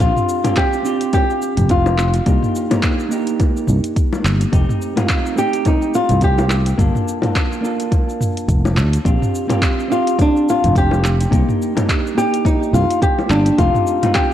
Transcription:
0.00 fretless electric bass A#1, clean electric guitar C4 D4 F4 G4, nylon-string guitar F4, kick, closed hi-hat, cabasa
0.16 mid tom, cabasa
0.29 cabasa
0.44 clean electric guitar C4 D4 F4 G4, closed hi-hat, mid tom, high bongo, cabasa
0.56 nylon-string guitar G4, kick, clap, closed hi-hat, cabasa
0.73 cabasa
0.83 clean electric guitar C4 D4 F4 G4, cabasa
1.01 closed hi-hat, cabasa
1.13 nylon-string guitar G4, kick, closed hi-hat, high bongo, cabasa
1.30 cabasa
1.42 cabasa
1.57 fretless electric bass F1, closed hi-hat, mid tom, cabasa
1.69 nylon-string guitar F4, kick, closed hi-hat, cabasa
1.86 high bongo, cabasa
1.98 clap, cabasa
2.14 closed hi-hat, cabasa
2.26 fretless electric bass C2, clean electric guitar A#3 D4 D#4 G4, kick, closed hi-hat, cabasa
2.43 mid tom, cabasa
2.56 cabasa
2.70 clean electric guitar A#3 D4 D#4 G4, closed hi-hat, mid tom, high bongo, cabasa
2.83 kick, clap, closed hi-hat, cabasa
3.00 cabasa
3.09 clean electric guitar A#3 D4 D#4, cabasa
3.13 clean electric guitar G4
3.27 closed hi-hat, cabasa
3.40 kick, closed hi-hat, high bongo, cabasa
3.57 cabasa
3.67 fretless electric bass C2, mid tom, cabasa
3.84 closed hi-hat, cabasa
3.96 kick, closed hi-hat, cabasa
4.13 high bongo, cabasa
4.24 fretless electric bass G1, clap, cabasa
4.41 closed hi-hat, cabasa
4.52 fretless electric bass F1, clean electric guitar A3 C4 D#4 G4, kick, closed hi-hat, cabasa
4.69 mid tom, cabasa
4.82 cabasa
4.96 clean electric guitar A3 C4 D#4 F4, closed hi-hat, mid tom, high bongo, cabasa
5.09 kick, clap, closed hi-hat, cabasa
5.26 cabasa
5.35 clean electric guitar A3 C4 D#4 G4, nylon-string guitar G4, cabasa
5.53 closed hi-hat, cabasa
5.65 nylon-string guitar D#4, kick, closed hi-hat, high bongo, cabasa
5.82 cabasa
5.94 nylon-string guitar F4, cabasa
6.09 fretless electric bass C2, closed hi-hat, mid tom, cabasa
6.21 nylon-string guitar G4, kick, closed hi-hat, cabasa
6.38 high bongo, cabasa
6.50 clap, cabasa
6.66 closed hi-hat, cabasa
6.78 fretless electric bass G1, clean electric guitar A#3 D4 F4 A4, kick, closed hi-hat, cabasa
6.95 mid tom, cabasa
7.08 cabasa
7.22 clean electric guitar A#3 D4 F4 A4, closed hi-hat, mid tom, high bongo, cabasa
7.35 kick, clap, closed hi-hat, cabasa
7.52 cabasa
7.61 clean electric guitar A#3 D4 F4 A4, cabasa
7.80 closed hi-hat, cabasa
7.92 kick, closed hi-hat, high bongo, cabasa
8.09 cabasa
8.21 mid tom, cabasa
8.37 closed hi-hat, cabasa
8.48 fretless electric bass F1, kick, closed hi-hat, cabasa
8.65 high bongo, cabasa
8.77 fretless electric bass D2, clap, cabasa
8.93 closed hi-hat, cabasa
9.05 fretless electric bass A#1, clean electric guitar C4 D4 F4 G4, kick, closed hi-hat, cabasa
9.22 mid tom, cabasa
9.35 cabasa
9.48 clean electric guitar C4 D4 F4 G4, closed hi-hat, mid tom, high bongo, cabasa
9.62 kick, clap, closed hi-hat, cabasa
9.80 cabasa
9.88 clean electric guitar C4 D4 F4 G4, nylon-string guitar F4, cabasa
10.07 closed hi-hat, cabasa
10.19 nylon-string guitar D4, kick, closed hi-hat, high bongo, cabasa
10.36 cabasa
10.49 nylon-string guitar F4, cabasa
10.64 fretless electric bass F1, closed hi-hat, mid tom, cabasa
10.75 nylon-string guitar G4, kick, closed hi-hat, cabasa
10.91 high bongo, cabasa
11.04 clap, cabasa
11.21 closed hi-hat, cabasa
11.31 fretless electric bass C2, clean electric guitar A#3 D4 D#4 G4, kick, closed hi-hat, cabasa
11.49 mid tom, cabasa
11.62 cabasa
11.75 clean electric guitar A#3 D4 D#4 G4, closed hi-hat, mid tom, high bongo, cabasa
11.89 kick, clap, closed hi-hat, cabasa
12.07 cabasa
12.15 clean electric guitar A#3 D4 D#4 G4, nylon-string guitar G4, cabasa
12.34 closed hi-hat, cabasa
12.45 nylon-string guitar D#4, kick, closed hi-hat, high bongo, cabasa
12.63 cabasa
12.73 fretless electric bass C2, nylon-string guitar F4, mid tom, cabasa
12.90 closed hi-hat, cabasa
13.02 nylon-string guitar G4, kick, closed hi-hat, cabasa
13.19 high bongo, cabasa
13.30 fretless electric bass G1, nylon-string guitar D4, clap, cabasa
13.46 closed hi-hat, cabasa
13.58 fretless electric bass F1, clean electric guitar A3 C4 D#4 G4, nylon-string guitar F4, kick, closed hi-hat, cabasa
13.74 mid tom, cabasa
13.87 cabasa
14.02 clean electric guitar A3 C4 D#4 F4, closed hi-hat, mid tom, high bongo, cabasa
14.14 nylon-string guitar G4, kick, clap, closed hi-hat, cabasa

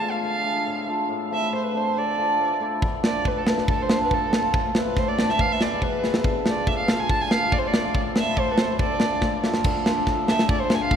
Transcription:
Already playing: hammered dulcimer A2, violin A5
0.00 hammered dulcimer A3 D4 F4
0.11 violin F5
0.22 hammered dulcimer D3, violin F5
0.43 hammered dulcimer A3 D4 G#4
0.65 hammered dulcimer A2
0.86 hammered dulcimer A3 D4 F4
1.09 hammered dulcimer A2
1.31 hammered dulcimer A3 C4 E4, violin E5
1.52 hammered dulcimer A2, violin C5
1.64 violin B4
1.74 hammered dulcimer A3 C4 D4, violin C5
1.96 hammered dulcimer D3, violin D5
2.17 hammered dulcimer A3 D4 F4
2.39 hammered dulcimer A2
2.60 hammered dulcimer A3 D4 E4
2.82 hammered dulcimer D3, kick
3.03 hammered dulcimer A3 D4 F4, violin D5, snare
3.25 hammered dulcimer A2, violin B4, kick
3.38 violin A4
3.46 hammered dulcimer A3 D4 E4, violin B4, snare
3.58 snare
3.68 hammered dulcimer D3, violin A4, kick
3.83 violin C5
3.89 hammered dulcimer A3 D4 F4, snare
4.04 violin B4
4.10 hammered dulcimer A2, violin A4, kick
4.33 hammered dulcimer A3 D4 F4, snare
4.54 hammered dulcimer A2, kick
4.74 hammered dulcimer A3 C4 E4, violin B4, snare
4.97 hammered dulcimer A2, violin C5, kick, snare
5.08 violin D5
5.18 hammered dulcimer A3 C4 D4, snare
5.29 violin E5, snare
5.39 hammered dulcimer E3, violin F5, kick
5.52 violin E5
5.60 hammered dulcimer G#3 B3 E4, violin D5, snare
5.81 hammered dulcimer B2, violin B4, kick
6.02 hammered dulcimer G#3 B3 E4, snare
6.14 snare
6.24 hammered dulcimer D3, kick
6.44 hammered dulcimer A3 D4 F4, snare
6.49 violin D5
6.66 hammered dulcimer A2, violin E5, kick
6.79 violin F5
6.88 hammered dulcimer A3 D4 F4, snare
7.00 violin G#5
7.09 hammered dulcimer D3, violin A5, kick
7.21 violin G#5
7.30 hammered dulcimer A3 D4 F4, violin F5, snare
7.51 hammered dulcimer A2, violin D5, kick
7.59 violin C5
7.68 violin D5
7.72 hammered dulcimer A3 D4 F4, snare
7.94 hammered dulcimer A2, kick
8.15 hammered dulcimer A3 C4 E4, violin E5, snare
8.36 hammered dulcimer A2, violin C5, kick
8.51 violin A4 B4
8.55 hammered dulcimer A3 C4 E4, violin B4, snare
8.60 violin C5
8.79 hammered dulcimer D3, violin D5, kick
8.99 hammered dulcimer A3 D4 F4, snare
9.21 hammered dulcimer A2, kick, snare
9.44 hammered dulcimer A3 D4 F4, snare
9.54 snare
9.64 hammered dulcimer D3, kick, crash
9.86 hammered dulcimer A3 D4 F4, snare
10.07 hammered dulcimer A2, kick, snare
10.27 hammered dulcimer A3 D4 G#4, violin E5, snare
10.39 snare
10.49 hammered dulcimer D3, violin D5, kick
10.61 violin C5
10.70 hammered dulcimer A3 D4 F4, snare
10.74 violin G#5
10.81 violin F5
10.91 hammered dulcimer A2, kick

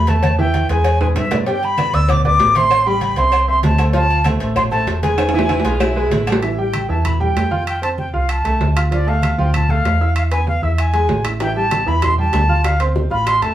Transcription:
Already playing: fingered electric bass E2, flute B5
0.07 grand piano A3 A4 B4, flute A5, cowbell, high conga, low agogo
0.23 cowbell, high conga, low agogo
0.39 grand piano E3 E4 E5, flute G5, high conga
0.54 cowbell, high conga, low timbale, low agogo
0.69 fingered electric bass E2, grand piano G#3 G#4 B4, flute G#5, cowbell, low agogo
0.84 cowbell, low agogo
1.00 grand piano G#3 G#4 B4, flute G#5, low conga, high timbale
1.16 fingered electric bass G2, flute E5, cowbell, low conga, high timbale, low agogo
1.31 grand piano B3 B4 D5, cowbell, low conga, low timbale, low agogo
1.46 grand piano G3 G4 G5, flute G5, cowbell, high conga
1.62 flute B5, high conga, low agogo
1.78 grand piano B3 B4 D5, cowbell, high conga, low timbale, low agogo, claves
1.93 fingered electric bass D2, grand piano B3 B4 D5, flute E6, cowbell, high conga
2.09 flute D6, cowbell, high conga, low conga, low agogo, claves
2.25 grand piano B3 B4 D5, flute D6, high conga, low conga, low agogo
2.39 fingered electric bass A1, cowbell, low timbale
2.55 grand piano C4 C5 E5, flute C6, cowbell, high conga, low agogo
2.71 cowbell, high conga, low agogo, claves
2.86 grand piano G3 G4 G5, flute B5, high conga
3.01 cowbell, high conga, low timbale, low agogo
3.16 fingered electric bass C2, grand piano C4 C5 E5, flute C6, cowbell, low agogo
3.32 cowbell, high conga, low agogo, claves
3.48 grand piano C4 C5 E5, flute C6, high conga
3.62 fingered electric bass D2, flute A5, cowbell, high conga, low timbale, low agogo
3.78 grand piano A3 A4 C5, cowbell, high conga, low agogo, claves
3.93 grand piano F3 F4 F5, flute A5, cowbell, high conga
4.10 high conga, low agogo
4.24 grand piano A3 A4 C5, cowbell, high conga, low timbale, low agogo, claves
4.40 fingered electric bass A1, grand piano A3 A4 C5, cowbell
4.56 flute C6, cowbell, high conga, low conga, low agogo, claves
4.71 grand piano A3 A4 C5, flute A5, low agogo
4.86 fingered electric bass E1, cowbell, high conga, low timbale
5.02 grand piano G#3 G#4 B4, flute G#5, cowbell, high conga, low agogo
5.18 cowbell, high conga, high timbale, low agogo, claves
5.29 high timbale
5.33 grand piano E3 E4 E5, saxophone section E4, high conga
5.39 low timbale
5.49 saxophone section E4, cowbell, high conga, high timbale, low agogo
5.60 low timbale
5.64 fingered electric bass B1, grand piano G#3 G#4 B4, saxophone section F4, cowbell, low agogo
5.80 saxophone section E4, cowbell, high conga, low timbale, low agogo, claves
5.96 grand piano G#3 G#4 B4, high conga
6.10 fingered electric bass A1, saxophone section E4, cowbell, high conga, low timbale, low agogo
6.27 grand piano G3 G4 A4, cowbell, high conga, low agogo, claves
6.32 low timbale
6.43 grand piano E3 E4 E5, flute E5, high conga, high timbale
6.58 grand piano G3 G4 G5, flute G5, high conga
6.74 high conga, high timbale, low timbale, claves
6.89 fingered electric bass E2, grand piano E3 E4 E5, flute A5, high conga
7.05 flute B5, high conga, low conga, high timbale, claves
7.20 grand piano G3 G4 G5, flute G5, high conga, low conga
7.35 fingered electric bass F2, high conga, high timbale, low timbale
7.51 grand piano F4 F5 F6, high conga
7.67 flute G5, high conga, high timbale, claves
7.82 grand piano C4 C5 C6, flute A5, high conga, high timbale
7.98 flute G5, high conga, low timbale
8.13 fingered electric bass C2, grand piano F4 F5 F6, flute F5, high conga
8.29 flute A5, high conga, high timbale, claves
8.44 fingered electric bass C2, grand piano A3 A4 A5, high conga, high timbale
8.60 fingered electric bass D2, high conga, low timbale
8.76 grand piano F4 F5 F6, high timbale, claves
8.91 grand piano F3 F4 F5, flute D5, high conga, high timbale
9.07 grand piano A3 A4 A5, flute F5, high conga
9.22 high conga, high timbale, low timbale, claves
9.38 fingered electric bass D2, grand piano F3 F4 F5, flute G5
9.54 flute A5, high conga, low conga, high timbale, claves
9.69 grand piano A3 A4 A5, flute F5, high conga, low conga
9.84 fingered electric bass E2, high conga, high timbale, low timbale
10.01 grand piano E4 E5 E6
10.16 flute F5, high conga, high timbale, claves
10.31 grand piano B3 B4 B5, flute G#5, high conga, high timbale
10.47 flute F5, high conga, low timbale
10.62 fingered electric bass E2, grand piano E4 E5 E6, flute E5, high conga
10.78 flute G#5, high conga, high timbale, claves
10.93 grand piano G#3 G#4 G#5, high conga, high timbale
11.09 fingered electric bass A1, high conga, low timbale
11.25 grand piano E4 E5 E6, high conga, high timbale, claves
11.40 grand piano E3 E4 E5, flute G5, high bongo, high conga, high timbale
11.56 grand piano G3 G4 G5, flute A5, high conga
11.71 high bongo, high conga, high timbale, low timbale, claves
11.86 fingered electric bass E2, grand piano E3 E4 E5, flute B5, high conga
12.02 flute C6, high bongo, high conga, low conga, high timbale, claves
12.18 grand piano G3 G4 G5, flute A5, high conga
12.33 fingered electric bass D2, high bongo, low bongo, high timbale, low timbale
12.49 grand piano F4 F5 F6, high conga
12.64 flute F5, high bongo, high conga, high timbale, claves
12.80 grand piano C4 C5 C6, high conga, high timbale
12.96 high bongo, high conga, low timbale
13.10 fingered electric bass A1, grand piano F4 F5 F6, flute B5, high bongo, high conga
13.26 flute C6, high bongo, high conga, high timbale, claves
13.41 fingered electric bass F1, grand piano A3 A4 A5, flute A5, high bongo, high conga, high timbale

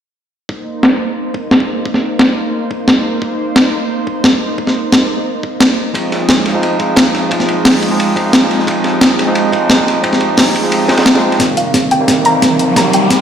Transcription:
0.49 analog synth pad A#3 D#4 C5, kick
0.83 snare
1.34 kick
1.51 snare
1.60 kick
1.86 kick
1.94 snare
2.19 snare
2.71 kick
2.88 snare
3.22 kick
3.56 snare
4.07 kick
4.24 snare
4.33 kick
4.58 kick
4.67 snare
4.92 snare
5.43 kick
5.60 snare
5.93 tine electric piano F3 G#3 C4 D#4, analog synth pad G#3 F4 D#5, kick, ride
6.12 snare, ride
6.29 snare, ride
6.46 snare, ride
6.54 tine electric piano F3 G#3 C4 D#4
6.63 ride
6.79 tine electric piano F3 G#3 C4 D#4, kick, ride
6.96 snare, ride
7.06 kick
7.14 snare, ride
7.30 tine electric piano F3 G#3 C4 D#4, kick, ride
7.40 snare, ride
7.48 ride
7.65 snare, open hi-hat
7.82 ride
7.91 tine electric piano F3 G#3 C4 D#4
8.00 ride
8.15 tine electric piano F3 G#3 C4 D#4, kick, ride
8.33 snare, ride
8.42 snare
8.51 snare, ride
8.59 snare
8.66 tine electric piano F3 G#3 C4 D#4, analog synth pad G4, kick, ride
8.84 snare, ride
9.01 snare, ride
9.19 snare, ride
9.27 tine electric piano F3 G#3 C4 D#4
9.35 ride
9.51 tine electric piano F3 G#3 C4 D#4, kick, ride
9.69 snare, ride
9.78 kick
9.87 snare, ride
10.03 tine electric piano F3 G#3 C4 D#4, kick, ride
10.13 snare, ride
10.21 ride
10.37 snare, open hi-hat
10.55 kick, ride
10.63 tine electric piano F3 G#3 C4 D#4
10.72 ride
10.88 tine electric piano F3 G#3 C4 D#4, kick, snare, ride
10.97 snare, ride
11.06 snare, ride
11.14 tine electric piano F3 G#3 C4 F4, snare, ride
11.32 snare, ride
11.39 tine electric piano C3 D#3 G3 A#3, analog synth pad C4 A#4 D#5, kick, snare, closed hi-hat, riser
11.57 synth pluck F5, closed hi-hat
11.74 kick, snare, closed hi-hat
11.91 synth pluck G5, closed hi-hat
12.00 tine electric piano C3 D#3 G3 A#3
12.08 kick, snare, closed hi-hat
12.24 tine electric piano C3 D#3 G3 A#3, synth pluck A#5, closed hi-hat
12.42 kick, snare, closed hi-hat
12.59 closed hi-hat
12.75 tine electric piano C3 D#3 G3 A#3, synth pluck A#5, kick, snare, closed hi-hat
12.93 synth pluck G5, closed hi-hat
13.10 kick, snare, closed hi-hat

